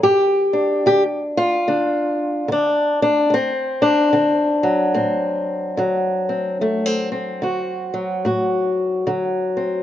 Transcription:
0.03 G2 G4
0.53 D4
0.86 D3 G4
1.37 F4
1.68 D3 D4
2.48 D3 D4
3.02 D4
3.30 D2 C4
3.82 D4
4.13 D3 C4
4.63 F#3
4.94 A2 C4
5.77 D3 F#3
6.29 C4
6.61 D2 A3
6.86 C4
7.12 C4
7.42 D3 F#4
7.94 F#3
8.25 A2 F#4
9.07 D3 F#3
9.57 C4

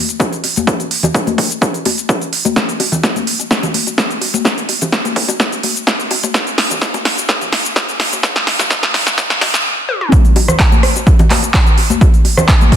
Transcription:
0.09 closed hi-hat, shaker
0.20 kick, closed hi-hat, high bongo, shaker
0.33 closed hi-hat, shaker
0.44 open hi-hat, high bongo
0.56 closed hi-hat, high conga, shaker
0.67 kick, closed hi-hat, shaker
0.80 closed hi-hat, high bongo, shaker
0.91 open hi-hat
1.03 closed hi-hat, high bongo, low conga, shaker
1.15 kick, closed hi-hat, shaker
1.27 closed hi-hat, high bongo, high conga, shaker
1.38 kick, open hi-hat
1.51 closed hi-hat, shaker
1.61 kick, closed hi-hat, high bongo, shaker
1.74 closed hi-hat, shaker
1.85 open hi-hat, high bongo, high conga
1.98 closed hi-hat, shaker
2.09 kick, closed hi-hat, high bongo, shaker
2.21 closed hi-hat, shaker
2.33 open hi-hat
2.45 closed hi-hat, high bongo, high conga, shaker
2.56 kick, snare, closed hi-hat, high bongo, shaker
2.69 closed hi-hat, shaker
2.80 open hi-hat, high bongo
2.92 closed hi-hat, low conga, shaker
3.03 kick, snare, closed hi-hat, high bongo, shaker
3.16 closed hi-hat, high conga, shaker
3.27 open hi-hat
3.39 closed hi-hat, high bongo, shaker
3.51 kick, snare, closed hi-hat, shaker
3.63 closed hi-hat, high bongo, low conga, shaker
3.74 open hi-hat, high conga
3.87 closed hi-hat, high bongo, shaker
3.98 kick, snare, closed hi-hat, shaker
4.10 closed hi-hat, shaker
4.21 open hi-hat, high bongo
4.34 closed hi-hat, high conga, shaker
4.45 kick, snare, closed hi-hat, high bongo, shaker
4.58 closed hi-hat, shaker
4.69 open hi-hat, high bongo
4.81 closed hi-hat, low conga, shaker
4.92 kick, snare, closed hi-hat, shaker
5.05 closed hi-hat, high bongo, high conga, shaker
5.16 kick, open hi-hat
5.28 closed hi-hat, high bongo, shaker
5.40 kick, snare, closed hi-hat, shaker
5.52 closed hi-hat, high bongo, shaker
5.63 open hi-hat, high conga
5.76 closed hi-hat, shaker
5.87 kick, snare, closed hi-hat, high bongo, shaker
6.00 closed hi-hat, shaker
6.11 open hi-hat, high bongo
6.23 closed hi-hat, high conga, shaker
6.34 kick, snare, closed hi-hat, high bongo, shaker
6.47 closed hi-hat, shaker
6.58 snare, open hi-hat
6.70 closed hi-hat, high bongo, low conga, shaker
6.81 kick, snare, closed hi-hat, shaker
6.94 closed hi-hat, high bongo, high conga, shaker
7.05 snare, open hi-hat
7.18 closed hi-hat, high bongo, shaker
7.29 kick, snare, closed hi-hat, shaker
7.41 closed hi-hat, low conga, shaker
7.52 snare, open hi-hat, high bongo, high conga
7.65 closed hi-hat, shaker
7.76 kick, snare, closed hi-hat, high bongo, shaker
7.89 closed hi-hat, shaker
8.00 snare, open hi-hat, high bongo
8.12 closed hi-hat, high conga, shaker
8.23 kick, snare, closed hi-hat, shaker
8.35 snare, closed hi-hat, high bongo, shaker
8.47 snare, open hi-hat
8.59 snare, high bongo, low conga, shaker
8.70 kick, snare, closed hi-hat, shaker
8.83 snare, closed hi-hat, high bongo, high conga, shaker
8.94 kick, snare, open hi-hat
9.07 snare, shaker
9.18 kick, snare, closed hi-hat, high bongo, shaker
9.30 snare, closed hi-hat, shaker
9.41 snare, open hi-hat, high bongo, high conga
9.54 snare, shaker
9.89 high tom
10.01 mid tom
10.12 kick, closed hi-hat, high bongo, shaker
10.25 closed hi-hat, shaker
10.36 open hi-hat, high bongo
10.48 cross-stick, closed hi-hat, low conga, shaker
10.59 kick, clap, closed hi-hat, high bongo, shaker
10.72 closed hi-hat, high conga, shaker
10.83 cross-stick, open hi-hat
10.96 closed hi-hat, high bongo, shaker
11.07 kick, closed hi-hat, shaker
11.19 closed hi-hat, high bongo, low conga, shaker
11.30 clap, open hi-hat, high conga
11.43 closed hi-hat, high bongo, shaker
11.54 kick, clap, closed hi-hat, shaker
11.66 closed hi-hat, shaker
11.78 open hi-hat, high bongo
11.90 closed hi-hat, high conga, shaker
12.01 kick, closed hi-hat, high bongo, shaker
12.14 closed hi-hat, shaker
12.25 open hi-hat, high bongo
12.37 cross-stick, closed hi-hat, low conga, shaker
12.48 kick, clap, closed hi-hat, shaker
12.61 closed hi-hat, high bongo, high conga, shaker
12.72 kick, open hi-hat

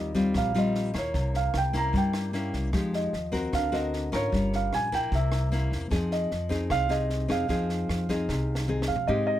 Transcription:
Already playing: D#2 D#3 G3 C4 F4 D#5
0.15 G3 C4 F4, kick, snare
0.34 A#1 A#2 F5, kick, cross-stick, snare
0.55 G3 C4 F4 D#5, snare
0.75 snare
0.94 D#2 A#3 E4, kick, cross-stick, snare
0.98 C#5
1.14 C2 C3, kick, snare
1.34 F5, snare
1.54 C2 G5, cross-stick, snare
1.73 A#3 C#4 E4 A#5, kick, snare
1.93 G2 G3, kick, snare
1.97 G5
2.13 cross-stick, snare
2.33 A#3 C#4 E4, snare
2.53 C2, kick, snare
2.73 F2 F3 G#3 D#4 G4, kick, cross-stick, snare
2.93 D#5, snare
3.13 D#2, snare
3.32 C4 F#4 A#4, kick, snare
3.53 D2 D3 F5, kick, cross-stick, snare
3.72 C4 F#4 A#4 D#5, snare
3.93 snare
4.12 G#1 C#4 F4 A#4 C#5, kick, cross-stick, snare
4.32 G1 G3, kick, snare
4.53 F5, snare
4.73 A#1 G#5, cross-stick, snare
4.92 A#3 E4 G5, kick, snare
5.12 C2 C3 E5, kick, snare
5.32 cross-stick, snare
5.52 A#3 C#4 E4, snare
5.71 E2, kick, snare
5.91 F2 F3 C4 D#4 G#4, kick, cross-stick, snare
6.11 D#5, snare
6.31 F2, snare
6.49 C4 D#4 G#4, kick, snare
6.70 C2 C3 F5, kick, cross-stick, snare
6.89 C4 D#4 G#4 D#5, snare
7.10 snare
7.28 F2 C4 D#4 G#4 F5, kick, cross-stick, snare
7.49 F2 F3 C4 D#4 G#4, kick, snare
7.69 snare
7.89 F2, cross-stick, snare
8.09 C4 D#4 G#4, kick, snare
8.29 C2 C3, kick, snare
8.55 snare
8.68 C4 D#4 G#4, mid tom
8.82 snare
8.88 F2 F5
8.96 floor tom
9.07 G#2 G#3 C4 D#4 G4 D#5
9.27 D#5

